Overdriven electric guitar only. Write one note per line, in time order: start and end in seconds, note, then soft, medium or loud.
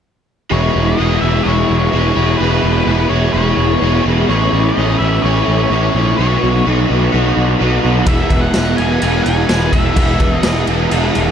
0.50 0.97 E3 medium
0.50 0.98 G#3 medium
0.50 0.99 B3 medium
0.50 1.00 E4 medium
0.98 1.44 E3 medium
0.98 1.24 G#3 medium
0.98 1.23 B3 medium
0.98 1.21 E4 medium
1.21 1.44 G#3 medium
1.21 1.46 B3 medium
1.21 1.47 E4 medium
1.45 1.91 E3 medium
1.45 1.92 G#3 medium
1.45 1.93 B3 medium
1.45 1.94 E4 medium
1.92 2.39 E3 medium
1.92 2.17 G#3 medium
1.92 2.15 B3 medium
1.92 2.15 E4 loud
2.15 2.39 G#3 medium
2.15 2.41 B3 medium
2.15 2.42 E4 medium
2.40 2.87 E3 medium
2.40 2.88 G#3 medium
2.40 2.88 B3 loud
2.40 2.90 E4 loud
2.88 3.34 E3 medium
2.88 3.12 G#3 medium
2.88 3.10 B3 medium
2.88 3.10 E4 medium
3.10 3.34 G#3 medium
3.10 3.35 B3 medium
3.10 3.36 E4 medium
3.34 3.81 E3 medium
3.34 3.82 G#3 medium
3.34 3.83 B3 medium
3.34 3.83 E4 medium
3.82 4.28 E3 medium
3.82 4.07 G#3 medium
3.82 4.06 B3 loud
3.82 4.05 E4 loud
4.06 4.30 G#3 medium
4.06 4.29 B3 medium
4.06 4.28 E4 medium
4.29 5.00 A2 medium
4.29 4.75 E3 loud
4.29 4.76 A3 loud
4.29 4.78 C#4 medium
4.29 4.78 E4 loud
4.76 5.23 E3 medium
4.76 5.02 A3 medium
4.76 5.02 C#4 medium
4.76 4.98 E4 medium
5.00 5.24 A3 medium
5.00 5.26 C#4 medium
5.00 5.26 E4 medium
5.24 5.71 E3 medium
5.24 5.72 A3 medium
5.24 5.73 C#4 medium
5.24 5.73 E4 medium
5.72 6.18 A2 medium
5.72 6.18 E3 loud
5.72 5.97 A3 loud
5.72 5.96 C#4 loud
5.72 5.94 E4 loud
5.95 6.19 A3 medium
5.95 6.20 C#4 medium
5.95 6.17 E4 medium
6.18 6.90 B2 medium
6.18 6.64 F#3 medium
6.18 6.66 B3 loud
6.18 6.66 D#4 loud
6.18 6.67 F#4 loud
6.65 7.10 F#3 medium
6.65 6.91 B3 medium
6.65 6.89 D#4 medium
6.65 6.87 F#4 medium
6.89 7.13 B3 medium
6.89 7.13 D#4 medium
6.89 7.14 F#4 medium
7.12 7.60 F#3 medium
7.12 7.61 B3 medium
7.12 7.61 D#4 medium
7.12 7.62 F#4 medium
7.60 8.06 B2 medium
7.60 8.07 F#3 medium
7.60 7.86 B3 medium
7.60 7.83 D#4 medium
7.60 7.82 F#4 loud
7.83 8.08 B3 medium
7.83 8.07 D#4 medium
7.83 8.06 F#4 medium
8.07 9.47 E2 medium
8.07 8.79 B2 medium
8.07 8.53 E3 medium
8.07 8.55 G#3 medium
8.07 8.55 B3 medium
8.07 8.56 E4 loud
8.54 8.81 E3 medium
8.54 8.80 G#3 medium
8.54 8.79 B3 medium
8.54 8.77 E4 loud
8.78 9.01 E3 medium
8.78 9.01 G#3 medium
8.78 9.02 B3 medium
8.78 9.04 E4 medium
9.01 9.49 E3 medium
9.01 9.49 G#3 medium
9.01 9.49 B3 medium
9.01 9.50 E4 medium
9.48 9.94 E2 medium
9.48 9.96 B2 medium
9.48 9.74 E3 medium
9.48 9.73 G#3 loud
9.48 9.72 B3 medium
9.48 9.72 E4 loud
9.72 9.97 E3 medium
9.72 9.96 G#3 medium
9.72 9.97 B3 medium
9.72 9.98 E4 medium
9.95 10.67 E2 medium
9.95 10.68 B2 medium
9.95 10.43 E3 medium
9.95 10.43 G#3 medium
9.95 10.44 B3 medium
9.95 10.45 E4 loud
10.43 10.69 E3 medium
10.43 10.68 G#3 medium
10.43 10.67 B3 medium
10.43 10.66 E4 medium
10.67 10.90 E3 medium
10.67 10.91 G#3 medium
10.67 10.92 B3 medium
10.67 10.93 E4 medium
10.91 11.31 E3 medium
10.91 11.31 G#3 medium
10.91 11.31 B3 medium
10.91 11.31 E4 medium